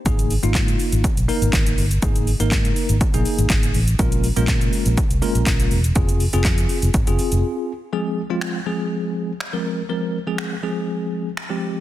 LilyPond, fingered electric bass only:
\new Staff \with { instrumentName = "Fingered electric bass" } { \clef bass \time 4/4 \key f \minor \tempo 4 = 122 aes,,8. aes,,16 aes,8 r16 aes,,16 r16 bes,,16 r16 aes,,16 r8 g,,8 | aes,,8. aes,,16 aes,8 r16 aes,,16 r16 bes,,16 r16 aes,,16 r8 a,,8 | bes,,8. bes,,16 bes,8 r16 bes,,16 r16 c,16 r16 bes,,16 r8 e,,8 | f,,8. f,,16 f,8 r16 f,,16 r16 f,,16 r16 f,,16 r4 |
r1 | r1 | }